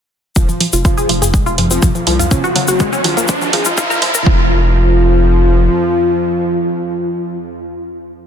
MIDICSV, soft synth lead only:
0, 0, Header, 1, 2, 480
1, 0, Start_track
1, 0, Tempo, 487805
1, 356, Time_signature, 4, 2, 24, 8
1, 8137, End_track
2, 0, Start_track
2, 0, Title_t, "Soft synth lead"
2, 0, Program_c, 0, 80
2, 356, Note_on_c, 0, 65, 96
2, 480, Note_off_c, 0, 65, 0
2, 836, Note_on_c, 0, 65, 95
2, 1077, Note_off_c, 0, 65, 0
2, 1680, Note_on_c, 0, 65, 95
2, 1859, Note_off_c, 0, 65, 0
2, 2036, Note_on_c, 0, 65, 89
2, 2160, Note_off_c, 0, 65, 0
2, 2275, Note_on_c, 0, 65, 89
2, 2458, Note_off_c, 0, 65, 0
2, 2639, Note_on_c, 0, 66, 91
2, 2819, Note_off_c, 0, 66, 0
2, 2995, Note_on_c, 0, 65, 94
2, 3237, Note_off_c, 0, 65, 0
2, 3476, Note_on_c, 0, 68, 87
2, 3600, Note_off_c, 0, 68, 0
2, 3716, Note_on_c, 0, 65, 97
2, 3957, Note_off_c, 0, 65, 0
2, 4197, Note_on_c, 0, 65, 101
2, 7258, Note_off_c, 0, 65, 0
2, 8137, End_track
0, 0, End_of_file